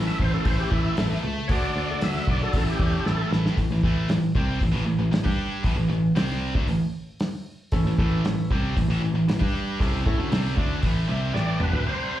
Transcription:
Already playing: distorted electric guitar A2 E3 A3, grand piano C#4 E4 A4
0.07 tonewheel organ E5, snare
0.20 picked electric bass A1, tonewheel organ C5, kick
0.33 grand piano C#4 E4 A4, tonewheel organ A4
0.44 picked electric bass A1, distorted electric guitar A2 E3 A3, tonewheel organ C5, kick, open hi-hat
0.60 tonewheel organ G4
0.70 picked electric bass A1, distorted electric guitar A2 E3 A3, tonewheel organ E4, kick
0.97 picked electric bass A1, tonewheel organ A3, snare, open hi-hat
1.23 picked electric bass C#2
1.48 picked electric bass D2, distorted electric guitar D3 A3 D4, grand piano D4 F#4 A4, tonewheel organ C#5, kick, open hi-hat
1.52 tonewheel organ D5
1.76 picked electric bass D2
1.91 grand piano D4 F#4 A4
2.01 picked electric bass D2, tonewheel organ E5, snare, open hi-hat
2.16 snare
2.27 picked electric bass B1, tonewheel organ D5, kick
2.42 grand piano D4 F#4 A4, tonewheel organ A4
2.53 picked electric bass A1, distorted electric guitar A2 E3 A3, grand piano C#4 E4 A4, kick, open hi-hat
2.69 tonewheel organ G4
2.79 picked electric bass E2, kick
3.06 picked electric bass A1, tonewheel organ A4, snare
3.31 picked electric bass A1, snare
3.46 snare
3.57 picked electric bass A1, distorted electric guitar A2 E3, kick, open hi-hat
3.71 picked electric bass A1, distorted electric guitar A2 E3
3.83 picked electric bass A1, distorted electric guitar A2 E3 A3, kick
4.09 picked electric bass A1, distorted electric guitar A2 E3, snare, open hi-hat
4.35 picked electric bass C2, distorted electric guitar C3 G3 C4, kick
4.60 picked electric bass A1, distorted electric guitar A2 E3, kick, open hi-hat
4.72 picked electric bass A1, distorted electric guitar A2 E3
4.86 picked electric bass A1, distorted electric guitar A2 E3
4.99 picked electric bass A1, distorted electric guitar A2 E3
5.12 picked electric bass A1, distorted electric guitar A2 E3, snare, open hi-hat
5.24 picked electric bass G2, distorted electric guitar G3 D4 G4, kick
5.63 picked electric bass A1, distorted electric guitar A2 E3, kick, open hi-hat
5.76 picked electric bass A1, distorted electric guitar A2 E3
5.88 picked electric bass A1, distorted electric guitar A2 E3
6.16 picked electric bass C2, distorted electric guitar C3 G3 C4, snare, open hi-hat
6.30 snare
6.55 picked electric bass D2, distorted electric guitar D3 A3, kick
6.67 picked electric bass A1, distorted electric guitar A2 E3, open hi-hat
7.20 snare, open hi-hat
7.72 picked electric bass A1, distorted electric guitar A2 E3, grand piano C#4 E4 A4, kick, open hi-hat
7.85 picked electric bass A1, distorted electric guitar A2 E3
7.98 picked electric bass A1, distorted electric guitar A2 E3 A3, grand piano C#4 E4 A4, kick
8.25 picked electric bass A1, distorted electric guitar A2 E3, snare, open hi-hat
8.51 picked electric bass C2, distorted electric guitar C3 G3 C4, kick
8.76 picked electric bass A1, distorted electric guitar A2 E3, kick, open hi-hat
8.88 picked electric bass A1, distorted electric guitar A2 E3
9.01 picked electric bass A1, distorted electric guitar A2 E3
9.14 picked electric bass A1, distorted electric guitar A2 E3
9.28 picked electric bass A1, distorted electric guitar A2 E3, snare, open hi-hat
9.39 picked electric bass G2, distorted electric guitar G3 D4 G4, kick
9.80 picked electric bass C2, distorted electric guitar C3 G3 C4, grand piano C#4 E4 A4, kick, open hi-hat
10.06 picked electric bass A2, distorted electric guitar A3 E4, grand piano C#4 E4 A4, kick
10.18 picked electric bass D2, distorted electric guitar D3 A3
10.31 picked electric bass C2, distorted electric guitar C3 G3 C4, snare, open hi-hat
10.46 snare
10.56 picked electric bass D2, distorted electric guitar D3 A3 D4, kick
10.81 picked electric bass A1, distorted electric guitar A2 E3 A3, kick, open hi-hat
11.08 picked electric bass C2, distorted electric guitar C3 G3 C4, grand piano E5
11.33 picked electric bass A1, distorted electric guitar A2 E3 A3, tonewheel organ D5, grand piano G5, snare
11.60 picked electric bass G1, distorted electric guitar G2 D3, tonewheel organ B4, grand piano A5, mid tom
11.73 picked electric bass D2, distorted electric guitar D3 A3, floor tom
11.86 distorted electric guitar C3 G3 C4, tonewheel organ C5

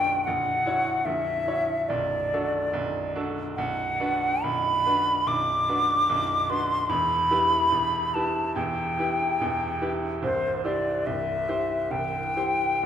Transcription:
Already playing: grand piano B0 B1 D4 F#4 B4, flute G5
0.24 grand piano A#0 A#1, flute F#5
0.66 grand piano E4 F#4 C#5
1.05 grand piano A#0 A#1, flute E5
1.47 grand piano E4 F#4 C#5
1.89 grand piano B0 B1, flute D5
2.33 grand piano D4 F#4 A4
2.73 grand piano B0 B1
3.15 grand piano D4 F#4 A4
3.56 grand piano B0 B1, flute F#5
4.00 grand piano D4 F#4 B4
4.43 grand piano B0 B1, flute B5
4.86 grand piano D4 F#4 B4
5.26 grand piano B0 B1, flute D6
5.68 grand piano D4 F#4 B4
6.09 grand piano B0 B1
6.49 grand piano D4 F#4 B4, flute C6
6.89 grand piano E1 E2, flute B5
7.30 grand piano E4 G4 B4
7.72 grand piano E1 E2
8.14 grand piano E4 G4 B4, flute A5
8.55 grand piano E1 E2, flute G5
8.99 grand piano E4 G4 B4
9.40 grand piano E1 E2
9.81 grand piano E4 G4 B4
10.22 grand piano C1 C2, flute C5
10.64 grand piano E4 G4 C5, flute D5
11.06 grand piano C1 C2, flute E5
11.48 grand piano E4 G4 C5
11.90 grand piano C1 C2, flute G5
12.36 grand piano E4 G4 C5
12.83 grand piano C1 C2

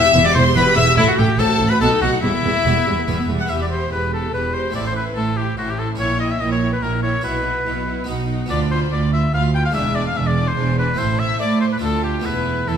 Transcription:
Already playing: harpsichord E2, violin section E5 E6
0.03 viola section G4
0.14 double bass section E1, harpsichord E2 B3 E4, cello section E2, viola section E4
0.24 viola section G4, oboe D5, violin section D5 D6
0.34 double bass section E1, harpsichord E2, cello section E2, viola section E4, oboe C5, violin section C5 C6
0.45 viola section G4
0.55 double bass section E1, harpsichord E2 B3 E4, cello section E2, viola section E4, oboe B4, violin section B4 B5
0.66 viola section G4
0.76 double bass section E1, harpsichord E2, cello section E2, viola section E4, oboe E5, violin section E5 E6
0.87 viola section G4
0.97 double bass section A1, harpsichord A2, cello section A2, oboe E4, violin section E4 E5, viola section A4
1.08 viola section F#4, oboe F#4, violin section F#4 F#5
1.17 double bass section A1, harpsichord A2, cello section A2, oboe G4, violin section G4 G5, viola section A4
1.28 viola section F#4
1.38 double bass section A1, harpsichord A2 C4 F#4, cello section A2, viola section A4, oboe A4, violin section A4 A5
1.49 viola section F#4
1.59 double bass section A1, harpsichord A2, cello section A2, viola section A4
1.70 viola section F#4, oboe B4, violin section B4 B5
1.80 double bass section B1, harpsichord B2 B3 D#4, cello section B2, viola section F#4, oboe A4, violin section A4 A5
1.91 viola section D#4
2.01 double bass section B1, harpsichord B2, cello section B2, oboe F#4, viola section F#4, violin section F#4 F#5
2.13 viola section D#4
2.22 double bass section E1, cello section E2, harpsichord E2, viola section G3, oboe E4, violin section E4 E5
2.33 viola section B3
2.43 double bass section E1, cello section E2, harpsichord E2, viola section G3
2.55 viola section B3
2.65 double bass section E1, cello section E2, harpsichord E2 B3 E4, viola section G3
2.76 viola section B3
2.86 double bass section E1, harpsichord E2, cello section E2, viola section G3
2.98 viola section B3
3.07 double bass section E1, harpsichord E2 B3 E4, cello section E2, viola section G3
3.19 viola section B3
3.28 double bass section E1, harpsichord E2, cello section E2, viola section G3
3.39 viola section B3, violin section F#5, oboe F#5
3.47 double bass section E1, harpsichord E2 B3 E4, cello section E2, viola section G4, oboe E5, violin section E5 B5
3.61 violin section D5, oboe D5
3.71 viola section G4, violin section C5 B5, oboe C5
3.91 double bass section E1, harpsichord E2, cello section E2, viola section G4, oboe B4, violin section B4 B5
4.12 viola section G4, violin section A4 B5, oboe A4
4.33 double bass section E1, harpsichord E2, cello section E2, viola section G4, oboe B4, violin section B4 B5
4.54 viola section G4, oboe C5, violin section C5 B5
4.70 double bass section A1, harpsichord A3 C4 E4, violin section C6
4.74 harpsichord A2, cello section A2, viola section E4, oboe D5, violin section D5
4.85 violin section C5, oboe C5
4.94 viola section E4, oboe B4, violin section B4 C6
5.15 double bass section A1, harpsichord A2, cello section A2, viola section E4, violin section A4 C6, oboe A4
5.37 viola section E4, oboe G4, violin section G4 C6
5.57 double bass section A1, harpsichord A2, cello section A2, viola section E4, violin section F#4 C6, oboe F#4
5.68 violin section G4, oboe G4
5.77 viola section E4, violin section A4 C6, oboe A4
5.95 double bass section A#1, harpsichord A#2 C#4 E4, cello section A#2, viola section E4, violin section C#5 G5
6.00 oboe C#5
6.19 viola section E4, violin section D#5 G5, oboe D#5
6.29 violin section E5, oboe E5
6.39 double bass section A#1, harpsichord A#2, cello section A#2, viola section E4, violin section D#5 G5, oboe D#5
6.50 violin section C#5, oboe C#5
6.61 viola section E4, violin section G5
6.72 violin section B4, oboe B4
6.82 double bass section A#1, cello section A#2, harpsichord A#2, viola section E4, violin section A#4 G5, oboe A#4
7.03 viola section E4, violin section C#5 G5, oboe C#5
7.21 double bass section B1, cello section B2, harpsichord B2 E4 F#4, viola section E4, oboe B4, violin section B4 F#5
7.45 viola section E4, violin section F#5
7.66 double bass section B1, cello section B2, harpsichord B2, viola section E4, violin section F#5
7.87 viola section E4, violin section F#5
8.04 double bass section B1, harpsichord B3 D#4 F#4, viola section D#4, violin section F#5
8.08 cello section B2, harpsichord B2
8.28 viola section D#4, violin section F#5
8.46 harpsichord B3 D4 F4, viola section F4
8.50 double bass section D2, harpsichord D2, cello section D2, violin section D5 B5, oboe D5
8.71 viola section F4, oboe C5, violin section C5 B5
8.92 cello section D2, double bass section D2, harpsichord D2, viola section F4, oboe D5, violin section D5 B5
9.13 viola section F4, oboe E5, violin section E5 B5
9.33 double bass section D2, harpsichord D2, cello section D2, viola section F4, violin section F5 B5, oboe F5
9.54 viola section F4, violin section G5 B5, oboe G5
9.65 violin section F5, oboe F5
9.70 double bass section E1, harpsichord G#3 D4 E4
9.74 harpsichord E2, cello section E2, viola section D4, oboe E5, violin section E5 G#5
9.95 viola section D4, violin section D5 G#5, oboe D5
10.05 violin section F5, oboe F5
10.15 double bass section E1, harpsichord E2, cello section E2, viola section D4, violin section E5 G#5, oboe E5
10.26 violin section D5, oboe D5
10.36 viola section D4, violin section G#5
10.46 violin section C5, oboe C5
10.57 double bass section E1, cello section E2, harpsichord E2, viola section D4, violin section G#5
10.77 viola section D4, violin section B4 G#5, oboe B4
10.94 harpsichord A3 C4 E4, violin section C5
10.98 double bass section A1, harpsichord A2, cello section A2, viola section E4, oboe C5, violin section A5
11.19 violin section E5, oboe E5
11.40 double bass section A2, harpsichord A3, cello section A3, violin section D5, oboe D5
11.61 violin section C5, oboe C5
11.71 violin section B4, oboe B4
11.78 harpsichord A3 D4 F4, viola section F4, violin section A5
11.82 double bass section D2, cello section D2, harpsichord D2, violin section A4, oboe A4
12.02 violin section G4, oboe G4
12.20 harpsichord A3 B3 E4, violin section B4
12.24 double bass section E1, harpsichord E2, cello section E2, viola section E4, oboe B4, violin section A5
12.67 double bass section E2, cello section E3, harpsichord E3, viola section E4, violin section A4 A5, oboe A4

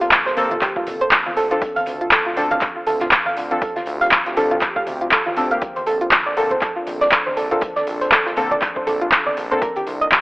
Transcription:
Already playing: analog synth pad A#3 C4 G4 A4
0.01 synth arpeggio sound F4, closed hi-hat
0.11 kick, snare, clap, closed hi-hat, high conga
0.26 analog synth bass G1, synth arpeggio sound C5, snare
0.36 analog synth bass G1, synth stab F3 A#3 C4 A4, closed hi-hat, open hi-hat, low conga
0.51 synth arpeggio sound F4, closed hi-hat, high conga, low conga
0.61 synth arpeggio sound G4, kick, clap, closed hi-hat
0.76 synth arpeggio sound F4, kick
0.87 analog synth bass G1, closed hi-hat, open hi-hat, high conga, low conga
1.01 synth arpeggio sound C5, closed hi-hat
1.11 kick, snare, clap, closed hi-hat
1.26 synth arpeggio sound F4, high conga
1.37 analog synth bass D2, analog synth pad F4, synth arpeggio sound A4, closed hi-hat, open hi-hat
1.51 synth stab F3 C4 D4 A4, synth arpeggio sound F4, closed hi-hat
1.62 kick, closed hi-hat
1.76 synth arpeggio sound F5, closed hi-hat, high conga
1.86 analog synth bass D2, closed hi-hat, open hi-hat
2.01 synth arpeggio sound F4, closed hi-hat
2.11 synth arpeggio sound A4, kick, snare, clap, closed hi-hat, high conga
2.26 analog synth bass D2, synth arpeggio sound F4
2.36 analog synth bass D2, synth stab F3 C4 D4 A4, closed hi-hat, open hi-hat, low conga
2.51 synth arpeggio sound F5, closed hi-hat, high conga, low conga
2.61 kick, clap, closed hi-hat
2.76 synth arpeggio sound F4
2.87 analog synth bass D2, synth arpeggio sound A4, closed hi-hat, open hi-hat, high conga
3.00 synth arpeggio sound F4, snare, closed hi-hat, low conga
3.11 kick, snare, clap, closed hi-hat
3.26 synth arpeggio sound F5, high conga
3.37 analog synth bass D2, analog synth pad G4, closed hi-hat, open hi-hat
3.51 synth stab F3 C4 D4 A4, synth arpeggio sound F4, closed hi-hat
3.62 synth arpeggio sound A4, kick, closed hi-hat
3.76 synth arpeggio sound F4, snare, closed hi-hat, high conga
3.86 analog synth bass D2, closed hi-hat, open hi-hat
4.01 synth arpeggio sound F5, closed hi-hat
4.11 kick, snare, clap, closed hi-hat, high conga
4.26 analog synth bass D2, synth arpeggio sound F4, snare, closed hi-hat
4.36 analog synth bass D2, synth stab F3 C4 D4 A4, synth arpeggio sound A4, closed hi-hat, open hi-hat, low conga
4.51 synth arpeggio sound F4, closed hi-hat, high conga, low conga
4.61 kick, clap, closed hi-hat
4.76 synth arpeggio sound F5, kick
4.87 analog synth bass D2, closed hi-hat, open hi-hat, high conga, low conga
5.01 synth arpeggio sound F4, closed hi-hat
5.11 synth arpeggio sound A4, kick, snare, clap, closed hi-hat
5.26 synth arpeggio sound F4, high conga
5.36 analog synth bass D2, synth stab F3 C4 D4 A4, closed hi-hat, open hi-hat
5.50 synth stab D3 A#3 C4 G4, synth arpeggio sound F5, closed hi-hat
5.62 analog synth pad D4 A4, kick, closed hi-hat
5.76 synth arpeggio sound C5, closed hi-hat, high conga
5.86 analog synth bass A#1, synth arpeggio sound A4, closed hi-hat, open hi-hat
6.01 synth arpeggio sound F4, closed hi-hat
6.11 kick, snare, clap, closed hi-hat, high conga
6.26 analog synth bass A#1, synth arpeggio sound D5
6.36 analog synth bass A#1, synth stab D3 A#3 C4 A4, closed hi-hat, open hi-hat, low conga
6.50 synth arpeggio sound C5, closed hi-hat, high conga, low conga
6.61 synth arpeggio sound A4, kick, clap, closed hi-hat
6.76 synth arpeggio sound F4
6.87 analog synth bass A#1, closed hi-hat, open hi-hat, high conga
7.01 synth arpeggio sound D5, snare, closed hi-hat, low conga
7.12 kick, snare, clap, closed hi-hat
7.26 synth arpeggio sound C5, high conga
7.37 analog synth bass A#1, synth arpeggio sound A4, closed hi-hat, open hi-hat
7.51 synth stab D3 A#3 C4 A4, synth arpeggio sound F4, closed hi-hat
7.61 kick, closed hi-hat
7.76 synth arpeggio sound D5, snare, closed hi-hat, high conga
7.87 analog synth bass A#1, closed hi-hat, open hi-hat
8.01 synth arpeggio sound C5, closed hi-hat
8.12 synth arpeggio sound A4, kick, snare, clap, closed hi-hat, high conga
8.26 analog synth bass A#1, synth arpeggio sound F4, snare
8.36 analog synth bass A#1, synth stab D3 A#3 C4 A4, closed hi-hat, open hi-hat, low conga
8.51 synth arpeggio sound D5, closed hi-hat, high conga, low conga
8.62 kick, clap, closed hi-hat
8.76 synth arpeggio sound C5, kick
8.87 analog synth bass A#1, synth arpeggio sound A4, closed hi-hat, open hi-hat, high conga, low conga
9.01 synth arpeggio sound F4, closed hi-hat
9.12 kick, snare, clap, closed hi-hat
9.26 synth arpeggio sound D5, high conga
9.37 analog synth bass A#1, closed hi-hat, open hi-hat
9.51 synth stab D3 A#3 C4 A4, synth arpeggio sound C5, closed hi-hat
9.62 analog synth pad D#4 A#4, synth arpeggio sound A#4, kick, closed hi-hat
9.76 synth arpeggio sound G4, closed hi-hat, high conga
9.87 analog synth bass C2, closed hi-hat, open hi-hat
10.01 synth arpeggio sound D#5, closed hi-hat
10.12 kick, snare, clap, closed hi-hat, high conga

